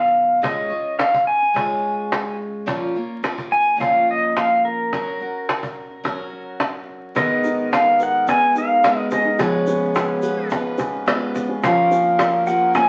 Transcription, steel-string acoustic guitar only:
0.00 0.43 B2 medium
0.00 0.41 D#3 medium
0.00 0.42 F#3 medium
0.00 0.43 B3 medium
0.00 0.43 D#4 medium
0.00 0.43 B4 medium
0.42 0.71 C#3 medium
0.42 0.71 G#3 medium
0.42 0.71 C#4 medium
0.42 0.70 F4 medium
0.42 0.68 C#5 medium
0.69 1.55 C#4 soft
0.69 1.55 F4 soft
0.69 1.57 C#5 soft
1.54 2.66 C#3 medium
1.54 2.67 G#3 medium
1.54 2.67 C#4 medium
1.54 2.67 F4 medium
1.54 2.68 C#5 medium
2.66 2.95 A#2 medium
2.66 2.95 F3 medium
2.66 2.95 A#3 medium
2.66 2.95 C#4 medium
2.66 2.95 F4 medium
2.66 2.94 A#4 loud
2.95 3.22 A#3 soft
2.95 3.22 C#4 soft
2.95 3.23 F4 soft
2.95 3.24 A#4 soft
3.23 3.77 A#3 medium
3.23 3.79 C#4 medium
3.23 3.79 F4 medium
3.23 3.80 A#4 medium
3.77 4.90 A#2 medium
3.77 4.91 F3 medium
3.77 4.92 A#3 medium
3.77 4.92 C#4 medium
3.77 4.92 F4 medium
3.77 4.94 A#4 medium
4.93 5.20 F#3 medium
4.93 5.21 C#4 medium
4.93 5.20 F#4 medium
4.93 5.19 A#4 medium
5.20 6.04 C#4 soft
5.20 6.04 F#4 soft
5.20 6.04 A#4 soft
6.04 7.16 F#3 medium
6.04 7.16 C#4 medium
6.04 7.17 F#4 medium
6.04 7.17 A#4 medium
7.15 8.27 G#2 medium
7.15 8.27 D#3 medium
7.15 8.26 G#3 medium
7.15 8.27 B3 medium
7.15 8.27 D#4 medium
7.15 8.28 A#4 medium
8.27 8.83 G#3 medium
8.27 8.83 B3 medium
8.27 8.84 D#4 medium
8.27 8.84 A#4 medium
8.84 9.38 G#3 medium
8.84 9.38 B3 medium
8.84 9.39 D#4 medium
8.84 9.40 A#4 medium
9.39 10.23 G#2 medium
9.39 10.23 C#3 medium
9.39 10.23 G#3 medium
9.39 10.23 B3 medium
9.39 10.23 F4 loud
9.39 10.21 B4 loud
10.23 10.49 G#3 soft
10.23 10.49 B3 soft
10.23 10.50 F4 soft
10.23 10.50 B4 medium
10.50 11.05 G#3 medium
10.50 11.06 B3 medium
10.50 11.07 F4 medium
10.50 11.07 B4 medium
11.06 11.62 G#3 medium
11.06 11.63 B3 medium
11.06 11.64 F4 medium
11.06 11.63 B4 medium
11.64 12.47 A#2 medium
11.64 12.89 F3 medium
11.64 12.47 A#3 medium
11.64 12.49 C#4 medium
11.64 12.48 F4 medium
11.64 12.47 A#4 loud
12.48 12.75 A#3 soft
12.48 12.76 C#4 soft
12.48 12.75 F4 soft
12.48 12.75 A#4 medium
12.76 12.89 A#3 medium
12.76 12.89 C#4 medium
12.76 12.89 F4 medium
12.76 12.89 A#4 medium

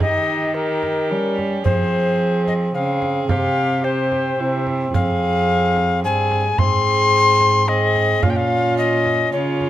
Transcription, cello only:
0.01 1.13 D#3 medium
1.11 1.65 G3 medium
1.65 2.73 F3 medium
2.75 3.29 C#3 medium
3.30 4.37 C3 medium
4.40 4.94 C3 medium
4.95 6.06 F2 medium
6.04 6.58 G2 medium
6.59 8.20 G#2 medium
8.23 9.31 A#2 medium
9.33 9.70 C#3 medium

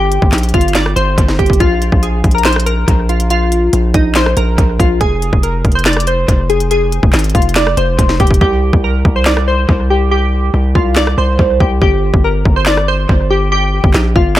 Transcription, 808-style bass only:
0.00 0.19 G1 loud
0.22 0.32 G1 loud
0.33 0.53 A#1 loud
0.54 0.95 G1 loud
0.96 1.17 G1 medium
1.18 1.38 G1 loud
1.39 1.60 G1 loud
1.60 1.91 A#1 loud
1.92 2.23 A#1 loud
2.24 2.85 A#1 loud
2.88 3.70 A#1 loud
3.73 3.94 A#1 loud
3.94 4.35 A#1 loud
4.37 4.57 A#1 loud
4.58 4.79 A#1 loud
4.80 5.00 A#1 loud
5.01 5.31 F1 loud
5.33 5.63 F1 loud
5.65 6.26 F1 loud
6.28 7.00 F1 loud
7.03 7.13 F1 loud
7.14 7.34 G#1 loud
7.35 7.76 F1 loud
7.77 7.98 F1 loud
7.99 8.19 F1 loud
8.20 8.40 F1 loud
8.41 8.72 C2 loud
8.73 9.04 C2 loud
9.05 9.66 C2 loud
9.69 10.51 C2 loud
10.54 10.74 C2 loud
10.75 11.16 C2 loud
11.18 11.38 C2 medium
11.39 11.59 C2 loud
11.60 11.81 C2 loud
11.82 12.12 G1 loud
12.14 12.44 G1 loud
12.45 13.07 G1 loud
13.09 13.81 G1 loud
13.84 13.94 G1 loud
13.94 14.15 A#1 loud
14.16 14.40 G1 loud

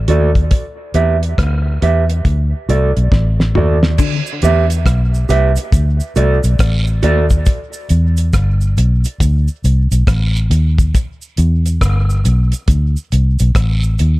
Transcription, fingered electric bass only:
0.08 0.50 D#2 medium
0.94 1.36 E2 medium
1.38 1.80 D2 medium
1.82 2.24 E2 medium
2.25 2.52 D2 loud
2.69 2.96 C2 medium
2.97 3.12 B1 medium
3.12 3.54 A1 medium
3.57 3.98 D#2 medium
4.43 4.84 E2 medium
4.86 5.28 B1 loud
5.29 5.56 C2 medium
5.73 6.00 D2 loud
6.16 6.43 C2 medium
6.44 6.59 B1 medium
6.59 7.01 A1 medium
7.03 7.45 D#2 medium
7.90 8.32 E2 loud
8.33 8.75 G1 loud
8.78 9.04 B1 medium
9.20 9.47 D2 loud
9.64 9.91 C2 medium
9.91 10.07 B1 medium
10.08 10.49 A1 medium
10.50 10.92 D#2 medium
11.38 11.80 E2 loud
11.82 12.23 G1 medium
12.25 12.52 B1 medium
12.68 12.95 D2 loud
13.12 13.39 C2 medium
13.40 13.54 B1 medium
13.55 13.97 A1 medium
14.00 14.20 D#2 medium

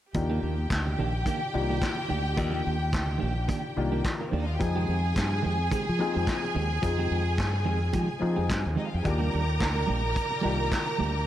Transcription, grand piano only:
0.15 1.14 D#3 medium
0.15 1.14 A#3 medium
0.15 1.14 D4 medium
0.15 1.14 F4 medium
0.15 1.14 G4 medium
1.54 2.28 D#3 medium
1.54 2.28 A#3 medium
1.54 2.28 D4 medium
1.54 2.29 F4 medium
1.54 2.29 G4 medium
2.37 3.36 D#3 medium
2.37 3.36 A#3 medium
2.37 3.36 D4 medium
2.37 3.36 F4 medium
2.37 3.37 A#4 medium
3.76 4.51 D#3 medium
3.76 4.51 A#3 medium
3.76 4.51 D4 medium
3.76 4.51 F4 medium
3.76 4.51 G4 medium
4.59 5.58 F3 medium
4.59 5.58 C4 medium
4.59 5.58 D#4 medium
4.59 5.59 F4 medium
4.59 5.59 G#4 medium
5.99 6.73 F3 medium
5.99 6.73 C4 medium
5.99 6.74 D#4 medium
5.99 6.74 F4 medium
5.99 6.74 G#4 medium
6.82 7.81 F3 medium
6.82 7.81 C4 medium
6.82 7.81 D#4 medium
6.82 7.81 F4 medium
6.82 7.82 G#4 medium
8.19 8.94 F3 medium
8.19 8.95 C4 medium
8.19 8.95 D#4 medium
8.19 8.96 F4 medium
8.19 8.96 G#4 medium
9.04 10.03 D#3 medium
9.04 10.03 A#3 medium
9.04 10.03 D4 medium
9.04 10.03 F4 medium
9.04 10.04 G4 medium
10.43 11.17 D#3 medium
10.43 11.17 A#3 medium
10.43 11.18 D4 medium
10.43 11.18 F4 medium
10.43 11.18 G4 medium

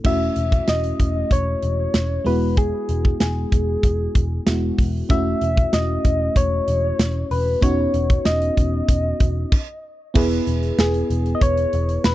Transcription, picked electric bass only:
0.05 0.27 E1 medium
0.37 0.59 E1 medium
0.68 0.91 E1 medium
1.00 1.22 E1 medium
1.31 1.54 E1 medium
1.63 1.86 E1 medium
1.94 2.17 E1 medium
2.26 2.71 E1 loud
2.89 3.12 E1 medium
3.21 3.44 E1 medium
3.52 3.75 E1 loud
3.83 4.06 E1 loud
4.15 4.38 E1 loud
4.47 4.70 E1 medium
4.79 5.01 E1 loud
5.10 5.33 E1 loud
5.42 5.64 E1 loud
5.73 5.96 E1 medium
6.05 6.28 E1 medium
6.36 6.59 E1 loud
6.68 6.91 E1 medium
6.99 7.22 E1 loud
7.31 7.54 E1 loud
7.62 7.85 E1 loud
7.94 8.17 E1 loud
8.26 8.48 E1 loud
8.57 8.80 E1 medium
8.89 9.11 E1 loud
9.20 9.43 E1 loud
10.16 10.38 E1 loud
10.47 10.70 E1 medium
10.79 11.01 E1 medium
11.10 11.33 E1 medium
11.42 11.64 E1 loud
11.73 11.96 E1 loud
12.05 12.15 E1 loud

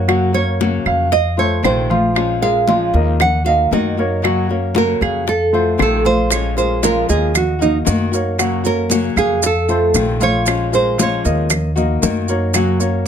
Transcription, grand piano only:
0.08 0.29 F#3 medium
0.08 0.29 F#4 medium
0.08 0.30 F#5 medium
0.35 0.77 A#3 medium
0.35 0.77 A#4 medium
0.35 0.78 C#5 medium
0.87 1.29 F5 loud
1.38 1.80 A3 medium
1.38 1.81 A4 medium
1.38 1.81 C5 medium
1.90 2.32 F3 loud
1.90 2.32 F4 medium
1.90 2.33 F5 medium
2.42 2.63 G#3 medium
2.42 2.63 G#4 medium
2.42 2.64 A#4 medium
2.68 2.89 F3 medium
2.68 2.89 F4 medium
2.68 2.90 F5 medium
2.95 3.37 A#3 medium
2.95 3.37 A#4 medium
2.95 3.37 D#5 medium
3.47 3.89 A#3 medium
3.47 3.89 A#4 medium
3.47 3.89 D#5 medium
3.99 4.19 A#3 medium
3.99 4.20 A#4 medium
3.99 4.20 C#5 medium
4.25 4.46 F#3 medium
4.25 4.46 F#4 medium
4.25 4.46 F#5 medium
4.50 4.93 A#3 medium
4.50 4.93 A#4 medium
4.50 4.93 C#5 medium
5.02 5.44 F5 medium
5.53 5.96 A3 medium
5.53 5.96 A4 medium
5.53 5.96 C5 medium
6.04 6.47 F3 medium
6.04 6.48 F4 medium
6.04 6.48 F5 medium
6.57 6.78 G#3 medium
6.57 6.78 G#4 medium
6.57 6.78 A#4 medium
6.83 7.04 F3 medium
6.83 7.04 F4 medium
6.83 7.05 F5 medium
7.09 7.52 A#3 medium
7.09 7.52 A#4 medium
7.09 7.52 D#5 medium
7.61 8.03 A#3 medium
7.61 8.04 A#4 medium
7.61 8.04 D#5 medium
8.13 8.35 A#3 medium
8.13 8.35 A#4 medium
8.13 8.35 C#5 medium
8.39 8.60 F#3 medium
8.39 8.60 F#4 medium
8.39 8.61 F#5 medium
8.64 9.07 A#3 medium
8.64 9.07 A#4 medium
8.64 9.08 C#5 medium
9.17 9.60 F5 medium
9.69 10.11 A3 medium
9.69 10.12 A4 medium
9.69 10.12 C5 medium
10.21 10.63 F3 medium
10.21 10.64 F4 medium
10.21 10.64 F5 loud
10.72 10.94 G#3 medium
10.72 10.94 G#4 medium
10.72 10.94 A#4 medium
10.98 11.20 F3 medium
10.98 11.20 F4 medium
10.98 11.20 F5 medium
11.25 11.67 A#3 medium
11.25 11.68 A#4 medium
11.25 11.68 D#5 medium
11.76 12.19 A#3 medium
11.76 12.19 A#4 medium
11.76 12.20 D#5 medium
12.29 12.50 A#3 medium
12.29 12.50 A#4 medium
12.29 12.51 C#5 medium
12.54 12.76 F#3 medium
12.54 12.76 F#4 medium
12.54 12.76 F#5 medium
12.80 13.07 A#3 medium
12.80 13.07 A#4 medium
12.80 13.07 C#5 medium

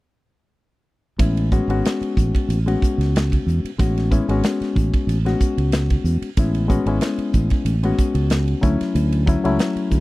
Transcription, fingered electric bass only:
1.19 1.59 A1 medium
1.68 1.80 G#1 medium
2.01 muted fingered electric bass stroke soft
2.17 2.31 A1 medium
2.48 2.75 A1 medium
2.98 3.37 C#2 medium
3.47 3.60 E2 medium
3.64 muted fingered electric bass stroke soft
3.79 4.19 A1 medium
4.28 4.40 G#1 medium
4.61 muted fingered electric bass stroke soft
4.76 4.90 A1 medium
5.07 5.34 A1 medium
5.58 5.96 C#2 medium
6.04 6.19 E2 medium
6.22 muted fingered electric bass stroke soft
6.37 6.77 A1 medium
6.86 6.98 G#1 medium
7.18 muted fingered electric bass stroke soft
7.34 7.48 A1 medium
7.65 7.92 A1 medium
8.15 8.53 C#2 medium
8.62 8.77 D2 medium
8.81 muted fingered electric bass stroke soft
8.95 9.35 D2 medium
9.45 9.57 C#2 medium
9.76 muted fingered electric bass stroke soft
9.91 10.00 D2 medium

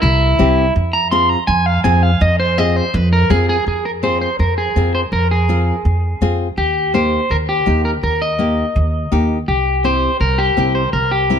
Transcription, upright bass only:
0.03 0.32 C2 loud
0.40 0.69 C2 medium
0.76 1.34 F2 medium
1.48 1.77 F2 loud
1.84 2.14 F2 loud
2.21 2.79 F2 loud
2.94 3.23 F2 loud
3.30 3.59 F2 medium
3.67 4.25 F2 medium
4.39 4.68 F2 medium
4.76 5.05 F2 medium
5.12 5.70 F2 medium
5.85 6.14 F2 medium
6.21 6.50 F2 medium
6.57 7.16 D#2 medium
7.30 7.59 D#2 medium
7.67 7.96 D#2 medium
8.03 8.61 D#2 medium
8.76 9.05 D#2 loud
9.12 9.41 D#2 medium
9.48 10.06 C2 medium
10.20 10.50 C2 medium
10.57 10.86 C2 medium
10.93 11.39 C2 medium

